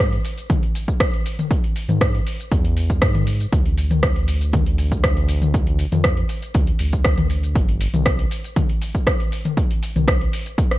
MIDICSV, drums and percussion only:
0, 0, Header, 1, 2, 480
1, 0, Start_track
1, 0, Tempo, 504202
1, 1434, Time_signature, 4, 2, 24, 8
1, 10269, End_track
2, 0, Start_track
2, 0, Title_t, "Drums"
2, 0, Note_on_c, 9, 82, 41
2, 95, Note_off_c, 9, 82, 0
2, 120, Note_on_c, 9, 42, 41
2, 215, Note_off_c, 9, 42, 0
2, 234, Note_on_c, 9, 46, 86
2, 238, Note_on_c, 9, 82, 104
2, 329, Note_off_c, 9, 46, 0
2, 333, Note_off_c, 9, 82, 0
2, 358, Note_on_c, 9, 42, 31
2, 362, Note_on_c, 9, 82, 59
2, 453, Note_off_c, 9, 42, 0
2, 457, Note_off_c, 9, 82, 0
2, 474, Note_on_c, 9, 36, 127
2, 475, Note_on_c, 9, 42, 69
2, 475, Note_on_c, 9, 47, 77
2, 479, Note_on_c, 9, 82, 46
2, 570, Note_off_c, 9, 36, 0
2, 570, Note_off_c, 9, 42, 0
2, 570, Note_off_c, 9, 47, 0
2, 574, Note_off_c, 9, 82, 0
2, 600, Note_on_c, 9, 42, 40
2, 695, Note_off_c, 9, 42, 0
2, 715, Note_on_c, 9, 46, 77
2, 719, Note_on_c, 9, 82, 94
2, 810, Note_off_c, 9, 46, 0
2, 814, Note_off_c, 9, 82, 0
2, 839, Note_on_c, 9, 36, 63
2, 844, Note_on_c, 9, 82, 54
2, 934, Note_off_c, 9, 36, 0
2, 939, Note_off_c, 9, 82, 0
2, 954, Note_on_c, 9, 36, 127
2, 955, Note_on_c, 9, 37, 104
2, 955, Note_on_c, 9, 42, 60
2, 959, Note_on_c, 9, 82, 43
2, 1049, Note_off_c, 9, 36, 0
2, 1050, Note_off_c, 9, 37, 0
2, 1050, Note_off_c, 9, 42, 0
2, 1054, Note_off_c, 9, 82, 0
2, 1083, Note_on_c, 9, 42, 44
2, 1178, Note_off_c, 9, 42, 0
2, 1198, Note_on_c, 9, 46, 74
2, 1201, Note_on_c, 9, 82, 94
2, 1293, Note_off_c, 9, 46, 0
2, 1297, Note_off_c, 9, 82, 0
2, 1323, Note_on_c, 9, 42, 29
2, 1323, Note_on_c, 9, 47, 79
2, 1327, Note_on_c, 9, 82, 52
2, 1418, Note_off_c, 9, 42, 0
2, 1418, Note_off_c, 9, 47, 0
2, 1422, Note_off_c, 9, 82, 0
2, 1434, Note_on_c, 9, 36, 114
2, 1437, Note_on_c, 9, 42, 66
2, 1441, Note_on_c, 9, 82, 41
2, 1530, Note_off_c, 9, 36, 0
2, 1532, Note_off_c, 9, 42, 0
2, 1536, Note_off_c, 9, 82, 0
2, 1561, Note_on_c, 9, 42, 45
2, 1656, Note_off_c, 9, 42, 0
2, 1674, Note_on_c, 9, 46, 89
2, 1678, Note_on_c, 9, 82, 98
2, 1769, Note_off_c, 9, 46, 0
2, 1773, Note_off_c, 9, 82, 0
2, 1800, Note_on_c, 9, 42, 31
2, 1800, Note_on_c, 9, 47, 98
2, 1804, Note_on_c, 9, 82, 54
2, 1895, Note_off_c, 9, 42, 0
2, 1895, Note_off_c, 9, 47, 0
2, 1899, Note_off_c, 9, 82, 0
2, 1915, Note_on_c, 9, 36, 124
2, 1916, Note_on_c, 9, 37, 102
2, 1916, Note_on_c, 9, 42, 67
2, 1920, Note_on_c, 9, 82, 41
2, 2010, Note_off_c, 9, 36, 0
2, 2011, Note_off_c, 9, 37, 0
2, 2011, Note_off_c, 9, 42, 0
2, 2015, Note_off_c, 9, 82, 0
2, 2044, Note_on_c, 9, 42, 42
2, 2139, Note_off_c, 9, 42, 0
2, 2158, Note_on_c, 9, 46, 79
2, 2162, Note_on_c, 9, 82, 102
2, 2253, Note_off_c, 9, 46, 0
2, 2257, Note_off_c, 9, 82, 0
2, 2283, Note_on_c, 9, 42, 33
2, 2287, Note_on_c, 9, 82, 60
2, 2378, Note_off_c, 9, 42, 0
2, 2382, Note_off_c, 9, 82, 0
2, 2395, Note_on_c, 9, 36, 120
2, 2397, Note_on_c, 9, 42, 66
2, 2401, Note_on_c, 9, 82, 45
2, 2490, Note_off_c, 9, 36, 0
2, 2492, Note_off_c, 9, 42, 0
2, 2496, Note_off_c, 9, 82, 0
2, 2520, Note_on_c, 9, 42, 44
2, 2615, Note_off_c, 9, 42, 0
2, 2634, Note_on_c, 9, 46, 79
2, 2638, Note_on_c, 9, 82, 89
2, 2729, Note_off_c, 9, 46, 0
2, 2733, Note_off_c, 9, 82, 0
2, 2760, Note_on_c, 9, 36, 62
2, 2760, Note_on_c, 9, 42, 30
2, 2764, Note_on_c, 9, 82, 52
2, 2855, Note_off_c, 9, 36, 0
2, 2856, Note_off_c, 9, 42, 0
2, 2859, Note_off_c, 9, 82, 0
2, 2873, Note_on_c, 9, 37, 106
2, 2873, Note_on_c, 9, 42, 66
2, 2875, Note_on_c, 9, 36, 127
2, 2876, Note_on_c, 9, 82, 41
2, 2968, Note_off_c, 9, 37, 0
2, 2968, Note_off_c, 9, 42, 0
2, 2970, Note_off_c, 9, 36, 0
2, 2972, Note_off_c, 9, 82, 0
2, 2997, Note_on_c, 9, 42, 45
2, 2997, Note_on_c, 9, 47, 94
2, 3092, Note_off_c, 9, 42, 0
2, 3092, Note_off_c, 9, 47, 0
2, 3112, Note_on_c, 9, 46, 71
2, 3115, Note_on_c, 9, 82, 95
2, 3207, Note_off_c, 9, 46, 0
2, 3211, Note_off_c, 9, 82, 0
2, 3239, Note_on_c, 9, 42, 29
2, 3243, Note_on_c, 9, 82, 56
2, 3334, Note_off_c, 9, 42, 0
2, 3338, Note_off_c, 9, 82, 0
2, 3356, Note_on_c, 9, 36, 118
2, 3356, Note_on_c, 9, 42, 65
2, 3360, Note_on_c, 9, 82, 41
2, 3451, Note_off_c, 9, 36, 0
2, 3452, Note_off_c, 9, 42, 0
2, 3455, Note_off_c, 9, 82, 0
2, 3481, Note_on_c, 9, 42, 47
2, 3576, Note_off_c, 9, 42, 0
2, 3594, Note_on_c, 9, 46, 85
2, 3598, Note_on_c, 9, 82, 94
2, 3689, Note_off_c, 9, 46, 0
2, 3693, Note_off_c, 9, 82, 0
2, 3720, Note_on_c, 9, 42, 30
2, 3720, Note_on_c, 9, 47, 95
2, 3724, Note_on_c, 9, 82, 55
2, 3815, Note_off_c, 9, 42, 0
2, 3815, Note_off_c, 9, 47, 0
2, 3819, Note_off_c, 9, 82, 0
2, 3835, Note_on_c, 9, 37, 102
2, 3835, Note_on_c, 9, 42, 70
2, 3836, Note_on_c, 9, 36, 115
2, 3839, Note_on_c, 9, 82, 42
2, 3931, Note_off_c, 9, 36, 0
2, 3931, Note_off_c, 9, 37, 0
2, 3931, Note_off_c, 9, 42, 0
2, 3934, Note_off_c, 9, 82, 0
2, 3960, Note_on_c, 9, 42, 45
2, 4055, Note_off_c, 9, 42, 0
2, 4074, Note_on_c, 9, 46, 84
2, 4077, Note_on_c, 9, 82, 101
2, 4169, Note_off_c, 9, 46, 0
2, 4173, Note_off_c, 9, 82, 0
2, 4200, Note_on_c, 9, 42, 34
2, 4204, Note_on_c, 9, 82, 58
2, 4295, Note_off_c, 9, 42, 0
2, 4299, Note_off_c, 9, 82, 0
2, 4315, Note_on_c, 9, 42, 72
2, 4315, Note_on_c, 9, 47, 88
2, 4316, Note_on_c, 9, 36, 118
2, 4319, Note_on_c, 9, 82, 41
2, 4410, Note_off_c, 9, 42, 0
2, 4410, Note_off_c, 9, 47, 0
2, 4411, Note_off_c, 9, 36, 0
2, 4414, Note_off_c, 9, 82, 0
2, 4440, Note_on_c, 9, 42, 44
2, 4535, Note_off_c, 9, 42, 0
2, 4553, Note_on_c, 9, 46, 84
2, 4557, Note_on_c, 9, 82, 83
2, 4648, Note_off_c, 9, 46, 0
2, 4652, Note_off_c, 9, 82, 0
2, 4681, Note_on_c, 9, 36, 59
2, 4683, Note_on_c, 9, 82, 48
2, 4776, Note_off_c, 9, 36, 0
2, 4778, Note_off_c, 9, 82, 0
2, 4795, Note_on_c, 9, 37, 107
2, 4795, Note_on_c, 9, 42, 69
2, 4796, Note_on_c, 9, 36, 127
2, 4799, Note_on_c, 9, 82, 41
2, 4890, Note_off_c, 9, 37, 0
2, 4890, Note_off_c, 9, 42, 0
2, 4891, Note_off_c, 9, 36, 0
2, 4894, Note_off_c, 9, 82, 0
2, 4921, Note_on_c, 9, 42, 43
2, 5016, Note_off_c, 9, 42, 0
2, 5032, Note_on_c, 9, 46, 71
2, 5035, Note_on_c, 9, 82, 94
2, 5127, Note_off_c, 9, 46, 0
2, 5131, Note_off_c, 9, 82, 0
2, 5158, Note_on_c, 9, 42, 29
2, 5158, Note_on_c, 9, 47, 84
2, 5162, Note_on_c, 9, 82, 53
2, 5253, Note_off_c, 9, 42, 0
2, 5253, Note_off_c, 9, 47, 0
2, 5257, Note_off_c, 9, 82, 0
2, 5274, Note_on_c, 9, 42, 66
2, 5276, Note_on_c, 9, 36, 110
2, 5278, Note_on_c, 9, 82, 36
2, 5369, Note_off_c, 9, 42, 0
2, 5371, Note_off_c, 9, 36, 0
2, 5373, Note_off_c, 9, 82, 0
2, 5397, Note_on_c, 9, 42, 51
2, 5492, Note_off_c, 9, 42, 0
2, 5511, Note_on_c, 9, 46, 86
2, 5515, Note_on_c, 9, 82, 92
2, 5606, Note_off_c, 9, 46, 0
2, 5610, Note_off_c, 9, 82, 0
2, 5638, Note_on_c, 9, 42, 32
2, 5638, Note_on_c, 9, 47, 96
2, 5641, Note_on_c, 9, 82, 50
2, 5733, Note_off_c, 9, 42, 0
2, 5733, Note_off_c, 9, 47, 0
2, 5737, Note_off_c, 9, 82, 0
2, 5750, Note_on_c, 9, 37, 106
2, 5750, Note_on_c, 9, 42, 74
2, 5754, Note_on_c, 9, 82, 37
2, 5755, Note_on_c, 9, 36, 111
2, 5845, Note_off_c, 9, 37, 0
2, 5845, Note_off_c, 9, 42, 0
2, 5849, Note_off_c, 9, 82, 0
2, 5850, Note_off_c, 9, 36, 0
2, 5875, Note_on_c, 9, 42, 47
2, 5970, Note_off_c, 9, 42, 0
2, 5988, Note_on_c, 9, 46, 79
2, 5992, Note_on_c, 9, 82, 98
2, 6084, Note_off_c, 9, 46, 0
2, 6087, Note_off_c, 9, 82, 0
2, 6115, Note_on_c, 9, 42, 35
2, 6119, Note_on_c, 9, 82, 55
2, 6211, Note_off_c, 9, 42, 0
2, 6214, Note_off_c, 9, 82, 0
2, 6229, Note_on_c, 9, 42, 76
2, 6233, Note_on_c, 9, 36, 121
2, 6233, Note_on_c, 9, 82, 42
2, 6324, Note_off_c, 9, 42, 0
2, 6328, Note_off_c, 9, 36, 0
2, 6328, Note_off_c, 9, 82, 0
2, 6351, Note_on_c, 9, 42, 44
2, 6447, Note_off_c, 9, 42, 0
2, 6464, Note_on_c, 9, 46, 84
2, 6468, Note_on_c, 9, 82, 89
2, 6560, Note_off_c, 9, 46, 0
2, 6564, Note_off_c, 9, 82, 0
2, 6593, Note_on_c, 9, 42, 33
2, 6597, Note_on_c, 9, 82, 49
2, 6598, Note_on_c, 9, 36, 56
2, 6688, Note_off_c, 9, 42, 0
2, 6692, Note_off_c, 9, 82, 0
2, 6693, Note_off_c, 9, 36, 0
2, 6707, Note_on_c, 9, 37, 101
2, 6707, Note_on_c, 9, 42, 70
2, 6711, Note_on_c, 9, 82, 37
2, 6713, Note_on_c, 9, 36, 116
2, 6802, Note_off_c, 9, 37, 0
2, 6802, Note_off_c, 9, 42, 0
2, 6806, Note_off_c, 9, 82, 0
2, 6808, Note_off_c, 9, 36, 0
2, 6831, Note_on_c, 9, 42, 49
2, 6831, Note_on_c, 9, 47, 98
2, 6926, Note_off_c, 9, 42, 0
2, 6926, Note_off_c, 9, 47, 0
2, 6948, Note_on_c, 9, 46, 78
2, 6952, Note_on_c, 9, 82, 84
2, 7043, Note_off_c, 9, 46, 0
2, 7047, Note_off_c, 9, 82, 0
2, 7077, Note_on_c, 9, 42, 33
2, 7081, Note_on_c, 9, 82, 47
2, 7172, Note_off_c, 9, 42, 0
2, 7176, Note_off_c, 9, 82, 0
2, 7192, Note_on_c, 9, 36, 112
2, 7193, Note_on_c, 9, 42, 71
2, 7196, Note_on_c, 9, 82, 36
2, 7287, Note_off_c, 9, 36, 0
2, 7288, Note_off_c, 9, 42, 0
2, 7292, Note_off_c, 9, 82, 0
2, 7318, Note_on_c, 9, 42, 49
2, 7413, Note_off_c, 9, 42, 0
2, 7432, Note_on_c, 9, 46, 97
2, 7436, Note_on_c, 9, 82, 89
2, 7527, Note_off_c, 9, 46, 0
2, 7531, Note_off_c, 9, 82, 0
2, 7556, Note_on_c, 9, 42, 33
2, 7556, Note_on_c, 9, 47, 92
2, 7560, Note_on_c, 9, 82, 50
2, 7651, Note_off_c, 9, 42, 0
2, 7651, Note_off_c, 9, 47, 0
2, 7655, Note_off_c, 9, 82, 0
2, 7671, Note_on_c, 9, 37, 101
2, 7671, Note_on_c, 9, 42, 73
2, 7672, Note_on_c, 9, 36, 113
2, 7674, Note_on_c, 9, 82, 40
2, 7766, Note_off_c, 9, 37, 0
2, 7766, Note_off_c, 9, 42, 0
2, 7768, Note_off_c, 9, 36, 0
2, 7770, Note_off_c, 9, 82, 0
2, 7796, Note_on_c, 9, 42, 45
2, 7892, Note_off_c, 9, 42, 0
2, 7912, Note_on_c, 9, 46, 89
2, 7916, Note_on_c, 9, 82, 92
2, 8007, Note_off_c, 9, 46, 0
2, 8011, Note_off_c, 9, 82, 0
2, 8038, Note_on_c, 9, 42, 35
2, 8042, Note_on_c, 9, 82, 54
2, 8134, Note_off_c, 9, 42, 0
2, 8137, Note_off_c, 9, 82, 0
2, 8153, Note_on_c, 9, 36, 111
2, 8153, Note_on_c, 9, 42, 78
2, 8153, Note_on_c, 9, 47, 84
2, 8157, Note_on_c, 9, 82, 39
2, 8248, Note_off_c, 9, 36, 0
2, 8248, Note_off_c, 9, 42, 0
2, 8248, Note_off_c, 9, 47, 0
2, 8252, Note_off_c, 9, 82, 0
2, 8277, Note_on_c, 9, 42, 46
2, 8372, Note_off_c, 9, 42, 0
2, 8392, Note_on_c, 9, 46, 88
2, 8396, Note_on_c, 9, 82, 84
2, 8488, Note_off_c, 9, 46, 0
2, 8491, Note_off_c, 9, 82, 0
2, 8518, Note_on_c, 9, 36, 57
2, 8521, Note_on_c, 9, 82, 48
2, 8613, Note_off_c, 9, 36, 0
2, 8616, Note_off_c, 9, 82, 0
2, 8632, Note_on_c, 9, 36, 117
2, 8635, Note_on_c, 9, 37, 101
2, 8635, Note_on_c, 9, 42, 74
2, 8639, Note_on_c, 9, 82, 38
2, 8728, Note_off_c, 9, 36, 0
2, 8731, Note_off_c, 9, 37, 0
2, 8731, Note_off_c, 9, 42, 0
2, 8734, Note_off_c, 9, 82, 0
2, 8759, Note_on_c, 9, 42, 49
2, 8854, Note_off_c, 9, 42, 0
2, 8874, Note_on_c, 9, 46, 84
2, 8878, Note_on_c, 9, 82, 87
2, 8969, Note_off_c, 9, 46, 0
2, 8973, Note_off_c, 9, 82, 0
2, 8998, Note_on_c, 9, 42, 31
2, 8998, Note_on_c, 9, 47, 83
2, 9002, Note_on_c, 9, 82, 48
2, 9093, Note_off_c, 9, 42, 0
2, 9093, Note_off_c, 9, 47, 0
2, 9097, Note_off_c, 9, 82, 0
2, 9113, Note_on_c, 9, 36, 114
2, 9113, Note_on_c, 9, 42, 72
2, 9117, Note_on_c, 9, 82, 39
2, 9208, Note_off_c, 9, 36, 0
2, 9208, Note_off_c, 9, 42, 0
2, 9212, Note_off_c, 9, 82, 0
2, 9240, Note_on_c, 9, 42, 49
2, 9336, Note_off_c, 9, 42, 0
2, 9355, Note_on_c, 9, 46, 95
2, 9359, Note_on_c, 9, 82, 91
2, 9450, Note_off_c, 9, 46, 0
2, 9454, Note_off_c, 9, 82, 0
2, 9482, Note_on_c, 9, 42, 31
2, 9482, Note_on_c, 9, 47, 95
2, 9485, Note_on_c, 9, 82, 52
2, 9577, Note_off_c, 9, 42, 0
2, 9577, Note_off_c, 9, 47, 0
2, 9581, Note_off_c, 9, 82, 0
2, 9593, Note_on_c, 9, 36, 118
2, 9597, Note_on_c, 9, 37, 109
2, 9597, Note_on_c, 9, 42, 70
2, 9601, Note_on_c, 9, 82, 39
2, 9688, Note_off_c, 9, 36, 0
2, 9693, Note_off_c, 9, 37, 0
2, 9693, Note_off_c, 9, 42, 0
2, 9696, Note_off_c, 9, 82, 0
2, 9722, Note_on_c, 9, 42, 46
2, 9817, Note_off_c, 9, 42, 0
2, 9836, Note_on_c, 9, 46, 93
2, 9840, Note_on_c, 9, 82, 93
2, 9931, Note_off_c, 9, 46, 0
2, 9935, Note_off_c, 9, 82, 0
2, 9959, Note_on_c, 9, 42, 36
2, 9962, Note_on_c, 9, 82, 54
2, 10054, Note_off_c, 9, 42, 0
2, 10058, Note_off_c, 9, 82, 0
2, 10073, Note_on_c, 9, 36, 121
2, 10073, Note_on_c, 9, 42, 72
2, 10076, Note_on_c, 9, 82, 40
2, 10168, Note_off_c, 9, 36, 0
2, 10168, Note_off_c, 9, 42, 0
2, 10172, Note_off_c, 9, 82, 0
2, 10199, Note_on_c, 9, 37, 61
2, 10199, Note_on_c, 9, 42, 45
2, 10269, Note_off_c, 9, 37, 0
2, 10269, Note_off_c, 9, 42, 0
2, 10269, End_track
0, 0, End_of_file